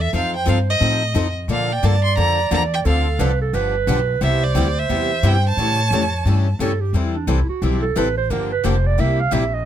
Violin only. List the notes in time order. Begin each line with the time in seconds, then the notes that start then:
0.01 E5
0.15 F5
0.36 G5
0.49 F5
0.70 D#5
1.52 F5
1.72 G5
1.85 A5
2.04 C6
2.17 A#5
2.54 A#5
2.74 G5
2.87 F5
4.23 E5
4.44 D5
4.79 E5
5.26 G5
5.49 A5